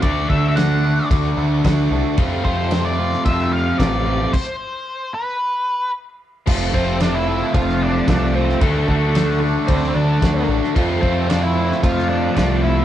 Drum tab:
CC |----------------|----------------|x---------------|x---------------|
RD |b---b---b---b---|b---b---b---b---|----------------|----b---b---b---|
SD |----o-------o---|----o--o----o---|----------------|----o----o--o--o|
BD |o-o-----o---o---|o-o-----o---o---|o---------------|o-o-----o---o---|

CC |----------------|----------------|
RD |b---b---b---b---|b---b---b---b---|
SD |----o----o--o--o|----o--o-o--o---|
BD |o-o-----o---o---|o-o-----o---o---|